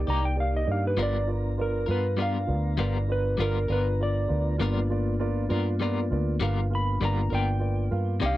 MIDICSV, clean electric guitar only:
0, 0, Header, 1, 2, 480
1, 0, Start_track
1, 0, Tempo, 603015
1, 783, Time_signature, 12, 3, 24, 8
1, 6665, End_track
2, 0, Start_track
2, 0, Title_t, "Clean electric guitar"
2, 0, Program_c, 0, 27
2, 57, Note_on_c, 0, 67, 55
2, 69, Note_on_c, 0, 63, 46
2, 85, Note_on_c, 0, 58, 43
2, 204, Note_off_c, 0, 67, 0
2, 210, Note_off_c, 0, 63, 0
2, 219, Note_off_c, 0, 58, 0
2, 772, Note_on_c, 0, 55, 71
2, 777, Note_on_c, 0, 59, 81
2, 785, Note_on_c, 0, 65, 82
2, 789, Note_on_c, 0, 70, 84
2, 922, Note_off_c, 0, 55, 0
2, 924, Note_off_c, 0, 59, 0
2, 928, Note_off_c, 0, 65, 0
2, 930, Note_off_c, 0, 70, 0
2, 1484, Note_on_c, 0, 70, 52
2, 1497, Note_on_c, 0, 65, 48
2, 1513, Note_on_c, 0, 59, 44
2, 1637, Note_off_c, 0, 70, 0
2, 1644, Note_off_c, 0, 65, 0
2, 1652, Note_off_c, 0, 59, 0
2, 1726, Note_on_c, 0, 55, 59
2, 1734, Note_on_c, 0, 59, 63
2, 1742, Note_on_c, 0, 65, 60
2, 1752, Note_on_c, 0, 70, 61
2, 1879, Note_off_c, 0, 55, 0
2, 1883, Note_off_c, 0, 59, 0
2, 1886, Note_off_c, 0, 65, 0
2, 1892, Note_off_c, 0, 70, 0
2, 2209, Note_on_c, 0, 55, 87
2, 2213, Note_on_c, 0, 59, 78
2, 2220, Note_on_c, 0, 65, 79
2, 2227, Note_on_c, 0, 70, 86
2, 2360, Note_off_c, 0, 55, 0
2, 2362, Note_off_c, 0, 59, 0
2, 2365, Note_off_c, 0, 65, 0
2, 2369, Note_off_c, 0, 70, 0
2, 2686, Note_on_c, 0, 55, 62
2, 2695, Note_on_c, 0, 59, 61
2, 2707, Note_on_c, 0, 65, 70
2, 2712, Note_on_c, 0, 70, 68
2, 2839, Note_off_c, 0, 55, 0
2, 2843, Note_off_c, 0, 59, 0
2, 2849, Note_off_c, 0, 65, 0
2, 2852, Note_off_c, 0, 70, 0
2, 2932, Note_on_c, 0, 70, 58
2, 2946, Note_on_c, 0, 65, 50
2, 2963, Note_on_c, 0, 59, 44
2, 3082, Note_off_c, 0, 70, 0
2, 3088, Note_off_c, 0, 65, 0
2, 3097, Note_off_c, 0, 59, 0
2, 3661, Note_on_c, 0, 55, 79
2, 3668, Note_on_c, 0, 59, 87
2, 3674, Note_on_c, 0, 65, 87
2, 3678, Note_on_c, 0, 70, 99
2, 3806, Note_off_c, 0, 55, 0
2, 3809, Note_off_c, 0, 59, 0
2, 3813, Note_off_c, 0, 65, 0
2, 3815, Note_off_c, 0, 70, 0
2, 4380, Note_on_c, 0, 70, 67
2, 4393, Note_on_c, 0, 65, 62
2, 4405, Note_on_c, 0, 59, 47
2, 4525, Note_off_c, 0, 70, 0
2, 4532, Note_off_c, 0, 65, 0
2, 4538, Note_off_c, 0, 59, 0
2, 4614, Note_on_c, 0, 55, 65
2, 4623, Note_on_c, 0, 59, 71
2, 4632, Note_on_c, 0, 65, 67
2, 4638, Note_on_c, 0, 70, 80
2, 4763, Note_off_c, 0, 55, 0
2, 4767, Note_off_c, 0, 59, 0
2, 4772, Note_off_c, 0, 65, 0
2, 4775, Note_off_c, 0, 70, 0
2, 5094, Note_on_c, 0, 55, 92
2, 5101, Note_on_c, 0, 59, 96
2, 5110, Note_on_c, 0, 65, 94
2, 5114, Note_on_c, 0, 70, 96
2, 5243, Note_off_c, 0, 55, 0
2, 5247, Note_off_c, 0, 59, 0
2, 5251, Note_off_c, 0, 65, 0
2, 5253, Note_off_c, 0, 70, 0
2, 5579, Note_on_c, 0, 55, 62
2, 5587, Note_on_c, 0, 59, 62
2, 5596, Note_on_c, 0, 65, 63
2, 5602, Note_on_c, 0, 70, 70
2, 5725, Note_off_c, 0, 55, 0
2, 5729, Note_off_c, 0, 59, 0
2, 5734, Note_off_c, 0, 65, 0
2, 5737, Note_off_c, 0, 70, 0
2, 5813, Note_on_c, 0, 70, 59
2, 5833, Note_on_c, 0, 65, 54
2, 5842, Note_on_c, 0, 59, 47
2, 5963, Note_off_c, 0, 70, 0
2, 5972, Note_off_c, 0, 65, 0
2, 5977, Note_off_c, 0, 59, 0
2, 6528, Note_on_c, 0, 48, 90
2, 6539, Note_on_c, 0, 58, 92
2, 6546, Note_on_c, 0, 63, 90
2, 6548, Note_on_c, 0, 67, 96
2, 6665, Note_off_c, 0, 48, 0
2, 6665, Note_off_c, 0, 58, 0
2, 6665, Note_off_c, 0, 63, 0
2, 6665, Note_off_c, 0, 67, 0
2, 6665, End_track
0, 0, End_of_file